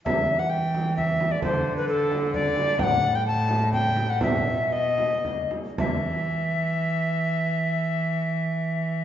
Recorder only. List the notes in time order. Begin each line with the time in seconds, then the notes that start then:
0.05 E5
0.39 F#5
0.50 G5
0.97 E5
1.31 D5
1.44 C5
1.77 B4
1.89 A4
2.34 D5
2.80 F#5 G5
3.15 G5
3.27 A5
3.73 G5
4.10 F#5
4.23 E5
4.72 D#5
5.79 E5